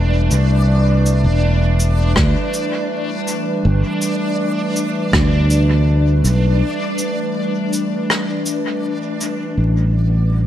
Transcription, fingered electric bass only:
0.00 0.28 E1 medium
0.31 1.26 C2 medium
1.24 2.13 E1 medium
2.17 2.34 D2 medium
3.65 3.82 G1 loud
5.13 6.21 D2 loud
6.24 6.61 B1 medium
9.57 10.47 A1 medium

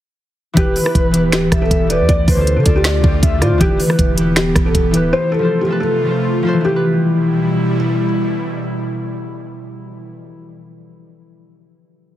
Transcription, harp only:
0.53 0.82 E3 medium
0.53 0.76 E4 loud
0.53 0.77 G4 medium
0.59 0.78 B4 loud
0.83 1.10 E3 medium
0.83 1.05 E4 medium
0.83 1.06 G4 medium
0.89 1.07 B4 medium
1.11 1.86 E3 medium
1.11 1.89 E4 medium
1.11 1.91 G4 medium
1.17 3.22 B4 medium
1.87 2.14 E3 medium
1.87 2.08 E4 medium
1.87 2.09 G4 medium
1.93 2.10 D5 medium
2.35 2.62 D3 medium
2.35 2.57 D4 medium
2.35 2.58 F4 medium
2.41 2.59 A4 medium
2.63 3.00 D3 medium
2.63 2.92 D4 medium
2.63 2.93 F4 medium
2.69 2.94 A4 medium
3.01 3.37 D3 medium
3.01 3.30 D4 medium
3.01 3.31 F4 medium
3.07 3.32 G4 medium
3.38 3.66 D3 medium
3.38 3.55 D4 medium
3.38 3.56 F4 medium
3.44 3.57 C5 medium
3.58 3.86 E3 loud
3.58 3.80 E4 loud
3.58 3.81 G4 medium
3.64 3.82 B4 loud
3.87 4.14 E3 medium
3.87 4.09 E4 medium
3.87 4.10 G4 medium
3.93 4.11 B4 medium
4.15 4.90 E3 medium
4.15 4.92 E4 medium
4.15 4.94 G4 medium
4.21 4.96 B4 medium
4.91 5.18 E3 medium
4.91 5.12 E4 medium
4.91 5.13 G4 medium
4.97 5.14 B4 medium
5.39 5.65 F3 medium
5.39 5.61 F4 medium
5.39 5.62 A4 medium
5.45 5.63 C5 medium
5.66 6.04 F3 medium
5.66 5.96 F4 medium
5.66 5.97 A4 medium
5.72 5.98 B4 medium
6.05 6.42 F3 medium
6.05 6.34 F4 medium
6.05 6.35 A4 medium
6.11 6.36 C5 medium
6.43 6.70 F3 loud
6.43 6.59 F4 medium
6.43 6.60 A4 medium
6.49 6.61 C5 loud
6.53 10.43 E3 medium
6.61 10.04 E4 medium
6.68 10.12 G4 medium
6.76 10.20 B4 loud

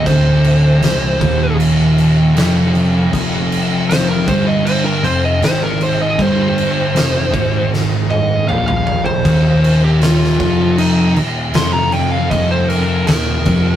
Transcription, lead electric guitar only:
0.06 1.55 C5 loud
3.89 4.08 C5 loud
4.09 4.27 A#4 medium
4.28 4.46 C5 medium
4.47 4.65 D#5 medium
4.65 4.84 C5 loud
4.85 5.04 A#4 medium
5.04 5.23 C5 medium
5.25 5.42 D#5 medium
5.44 5.62 C5 loud
5.64 5.83 A#4 medium
5.83 6.00 C5 loud
6.01 6.22 D#5 medium
6.22 7.69 C5 loud
8.10 8.47 D#5 medium
8.48 8.66 F5 loud
8.67 9.04 F5 medium
9.05 9.79 C5 medium
9.84 10.02 G4 medium
10.02 10.76 F4 medium
10.78 11.15 D#4 loud
11.55 11.73 C6 loud
11.73 11.92 A#5 loud
11.93 12.12 G5 loud
12.12 12.30 F5 medium
12.30 12.49 D#5 loud
12.51 12.69 C5 loud
12.69 13.06 A#4 medium
13.07 13.76 A#4 loud

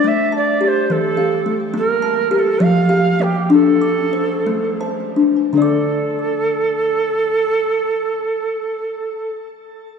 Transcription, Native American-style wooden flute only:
0.07 0.34 E5 medium
0.36 0.63 D5 medium
0.63 0.93 C5 medium
0.63 0.68 D5 medium
0.91 1.54 A4 medium
1.77 2.33 A#4 medium
2.33 2.39 A#4 medium
2.38 2.64 A4 medium
2.62 3.23 F5 medium
3.22 3.51 G4 medium
3.52 4.78 A4 medium
5.54 9.35 A4 medium

